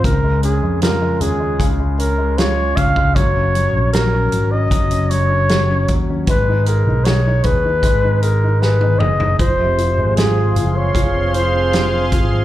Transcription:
<<
  \new Staff \with { instrumentName = "Analog synth pad" } { \time 4/4 \key des \major \tempo 4 = 77 r1 | r1 | r1 | <aes' f'' c'''>1 | }
  \new Staff \with { instrumentName = "Flugelhorn" } { \time 4/4 \key des \major bes'8 aes'8 bes'8 aes'8. r16 bes'8 des''8 f''8 | des''4 bes'8. ees''8. des''4~ des''16 r16 | ces''8 bes'8 des''8 ces''4 bes'8 ces''8 ees''8 | c''4 aes'8. des''8. c''4~ c''16 r16 | }
  \new Staff \with { instrumentName = "Grand piano" } { \time 4/4 \key des \major des16 aes16 des'16 aes16 f'16 aes16 des'16 aes16 des16 aes16 des'16 aes16 f'16 aes16 des'16 aes16 | ges16 des'16 ges16 des'16 ges16 des'16 ges16 des'16 ges16 des'16 ges16 des'16 ges16 des'16 ges16 des'16 | aes16 ees'16 aes'16 ees'16 aes'16 ees'16 aes'16 ees'16 aes16 ees'16 aes'16 ees'16 aes'16 ees'16 aes'16 ees'16 | f16 c16 f16 aes16 f8 f8 f16 c'16 f16 c'16 f16 c'16 f16 c'16 | }
  \new Staff \with { instrumentName = "Fretless electric bass" } { \clef bass \time 4/4 \key des \major des,8. f,8. ees,8 des,4. des,8 | ges,,8. bes,,8. aes,,8 ges,,4. ees,8 | aes,,8. ces,8. ees,8 aes,,4. ges,,8 | f,,8. aes,,8. ges,,8 f,,4. aes,,8 | }
  \new DrumStaff \with { instrumentName = "Drums" } \drummode { \time 4/4 <hh bd>8 hh8 <hh sn>8 hh8 <hh bd>8 hh8 <hh sn>8 <hh bd>16 bd16 | <hh bd>8 hh8 <hh sn>8 hh8 <hh bd>16 hh16 hh8 <hh sn>8 <hh bd>8 | <hh bd>8 hh8 <hh sn>8 <hh bd>8 <hh bd>8 hh8 sn16 tommh16 toml16 tomfh16 | <hh bd>8 hh8 <hh sn>8 hh8 <hh bd>8 hh8 <hh sn>8 <hh bd>8 | }
>>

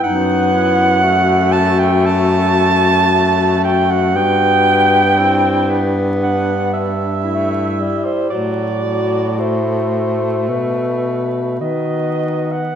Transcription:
<<
  \new Staff \with { instrumentName = "Alto saxophone" } { \time 4/4 \key e \minor \tempo 4 = 57 fis''4. a''16 g''16 a''4. g''16 fis''16 | g''4.~ g''16 r16 fis''8 e''4~ e''16 c''16 | d''4 c''4 b'4 dis''8. fis''16 | }
  \new Staff \with { instrumentName = "Clarinet" } { \time 4/4 \key e \minor dis'8 e'8 fis'2.~ | fis'4 e'8. r16 d'4 e'4 | fis'2. fis'8. r16 | }
  \new Staff \with { instrumentName = "Tenor saxophone" } { \time 4/4 \key e \minor b4 a2 a4 | b4 c'8 b4~ b16 r16 a8 g8 | fis8 fis8 a2 b4 | }
  \new Staff \with { instrumentName = "Baritone saxophone" } { \clef bass \time 4/4 \key e \minor fis,1 | g,2.~ g,8. r16 | a,2 b,4 dis4 | }
>>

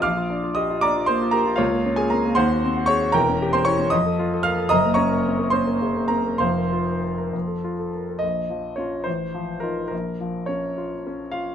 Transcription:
\new Staff \with { instrumentName = "Grand piano" } { \time 6/8 \key c \dorian \tempo 4. = 73 << { <f'' d''' f'''>4 <ees'' ees'''>8 <d'' bes'' d'''>8 <c'' c'''>8 <bes' bes''>8 | \key bes \minor <f' des'' f''>8. <aes' aes''>16 <bes' bes''>8 <c'' ges'' c'''>4 <des'' des'''>8 | <bes' g'' bes''>8. <c'' c'''>16 <cis'' cis'''>8 <ees'' ees'''>4 <f'' f'''>8 | <ees'' bes'' ees'''>8 <des'' bes'' des'''>4 <c'' c'''>4 <bes' bes''>8 |
<c'' f'' c'''>2~ <c'' f'' c'''>8 r8 | ees''4 des''8 c''4 bes'8 | bes'4 des''4. f''8 | } \\ { bes,,16 f'16 d'16 f'16 g'16 f'16 d'16 f'16 bes16 f'16 g'16 f'16 | des,16 bes16 des'16 bes16 c'16 bes16 ees,16 ges'16 c'16 ges'16 aes'16 ges'16 | <e,, e,>16 cis'16 g'16 cis'16 e'16 cis'16 f,16 a'16 f'16 a'16 bes'16 a'16 | <ges,, ges,>16 bes16 des'16 bes16 c'16 bes16 des'16 bes16 des16 bes16 c'16 bes16 |
<f,, f,>16 bes'16 f'16 bes'16 c''16 bes'16 f,16 a'16 f'16 a'16 bes'16 a'16 | bes,,8 f8 <des' f'>8 a,,8 f8 <ees' f'>8 | bes,,8 f8 des'8 f'8 des'8 f'8 | } >> }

